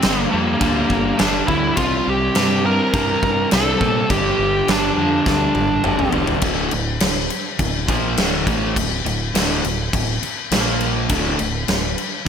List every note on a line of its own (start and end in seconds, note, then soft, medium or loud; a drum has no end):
0.00 0.29 G2 medium
0.00 0.30 D3 medium
0.00 0.32 G3 medium
0.00 0.20 C4 loud
0.00 snare loud
0.00 crash medium
0.04 0.25 G1 loud
0.20 0.31 A#3 loud
0.30 0.55 F2 medium
0.30 0.58 G2 medium
0.30 0.58 D3 medium
0.30 0.60 G3 loud
0.30 1.22 A#3 medium
0.59 0.83 D2 medium
0.59 1.17 G2 loud
0.59 1.17 D3 loud
0.59 1.19 G3 loud
0.59 kick loud
0.59 crash medium
0.90 1.11 G1 loud
0.90 kick medium
1.18 1.41 G1 loud
1.18 1.46 G2 medium
1.18 1.47 D3 medium
1.18 1.48 G3 loud
1.18 1.48 D4 medium
1.18 snare loud
1.18 crash medium
1.47 1.70 D2 medium
1.47 1.75 G2 medium
1.47 1.75 D3 medium
1.47 1.78 G3 medium
1.47 1.76 E4 medium
1.47 kick medium
1.77 1.99 C2 loud
1.77 2.34 C3 loud
1.77 2.36 G3 loud
1.77 2.35 C4 loud
1.77 2.07 F4 loud
1.77 kick loud
1.77 crash medium
2.07 2.29 C2 loud
2.07 2.65 G4 loud
2.35 2.79 G2 loud
2.35 2.63 C3 medium
2.35 2.65 G3 medium
2.35 2.65 C4 medium
2.35 snare loud
2.35 crash medium
2.65 2.92 C3 medium
2.65 2.93 G3 medium
2.65 2.94 C4 loud
2.65 3.48 A#4 loud
2.94 3.15 G2 loud
2.94 3.50 C3 loud
2.94 3.51 G3 loud
2.94 3.52 C4 loud
2.94 kick loud
2.94 crash medium
3.23 3.44 G2 loud
3.23 kick medium
3.51 3.74 C2 medium
3.51 3.79 C3 medium
3.51 3.80 G3 medium
3.51 3.81 C4 medium
3.51 4.10 A4 loud
3.51 snare loud
3.51 crash medium
3.81 4.03 A#2 medium
3.81 4.08 C3 medium
3.81 4.09 G3 medium
3.81 4.09 C4 medium
3.81 kick medium
4.10 4.31 G1 loud
4.10 4.67 G2 loud
4.10 4.68 D3 loud
4.10 4.69 G3 loud
4.10 4.70 G4 loud
4.10 kick loud
4.10 crash medium
4.39 4.61 G1 loud
4.68 4.90 G1 medium
4.68 4.96 G2 medium
4.68 4.97 D3 medium
4.68 4.97 G3 loud
4.68 6.11 D4 medium
4.68 snare loud
4.68 crash medium
4.97 5.19 F2 medium
4.97 5.26 G2 medium
4.97 5.26 D3 medium
4.97 5.27 G3 medium
5.26 5.48 D2 medium
5.26 5.83 G2 loud
5.26 5.83 D3 loud
5.26 5.85 G3 loud
5.26 kick loud
5.26 snare medium
5.55 5.77 G1 loud
5.55 high tom medium
5.84 6.07 G1 medium
5.84 6.12 G2 medium
5.84 6.12 D3 medium
5.84 6.13 G3 medium
5.84 mid tom loud
5.99 mid tom medium
6.12 6.35 E1 medium
6.12 6.41 G2 medium
6.12 6.41 D3 medium
6.12 6.41 G3 medium
6.12 floor tom loud
6.27 floor tom loud
6.42 6.70 D1 loud
6.42 6.71 D2 loud
6.42 6.71 A2 loud
6.42 6.72 D3 loud
6.42 kick loud
6.42 crash medium
6.71 6.99 D1 medium
6.71 6.96 D2 medium
6.71 6.96 A2 medium
6.71 crash medium
7.00 7.29 D1 medium
7.00 7.25 D2 medium
7.00 7.25 A2 medium
7.00 snare loud
7.00 crash medium
7.30 crash medium
7.59 7.87 D1 medium
7.59 7.83 D2 medium
7.59 7.83 A2 medium
7.59 kick medium
7.59 crash medium
7.88 8.16 A#1 loud
7.88 8.17 A#2 loud
7.88 8.17 F3 medium
7.88 8.17 A#3 loud
7.88 kick loud
7.88 crash medium
8.17 8.45 D1 medium
8.17 8.46 D2 medium
8.17 8.46 A2 loud
8.17 8.47 D3 medium
8.17 snare loud
8.17 crash medium
8.47 8.74 A1 loud
8.47 8.76 A2 medium
8.47 8.76 E3 medium
8.47 8.76 A3 medium
8.47 kick loud
8.47 crash medium
8.76 9.03 D1 medium
8.76 9.00 D2 medium
8.76 9.00 A2 medium
8.76 kick medium
8.76 crash medium
9.05 9.32 D1 medium
9.05 9.29 D2 medium
9.05 9.29 A2 medium
9.05 crash medium
9.34 9.62 D1 loud
9.34 9.63 D2 medium
9.34 9.63 A2 loud
9.34 9.64 D3 loud
9.34 snare loud
9.34 crash medium
9.64 9.91 D1 medium
9.64 9.87 D2 medium
9.64 9.88 A2 medium
9.64 crash medium
9.93 10.20 D1 medium
9.93 10.17 D2 medium
9.93 10.17 A2 medium
9.93 kick medium
9.93 crash medium
10.22 muted fingered electric bass stroke soft
10.22 muted overdriven electric guitar stroke medium
10.22 crash medium
10.51 11.06 A#1 loud
10.51 11.09 A#2 medium
10.51 11.09 F3 medium
10.51 11.10 A#3 medium
10.51 snare loud
10.51 crash medium
10.80 crash medium
11.09 11.37 D1 loud
11.09 11.38 D2 loud
11.09 11.38 A2 loud
11.09 11.38 D3 loud
11.09 kick loud
11.09 crash medium
11.39 11.66 D1 medium
11.39 11.62 D2 medium
11.39 11.62 A2 medium
11.39 crash medium
11.68 11.95 D1 medium
11.68 11.91 D2 medium
11.68 11.91 A2 medium
11.68 snare loud
11.68 crash medium
11.98 crash medium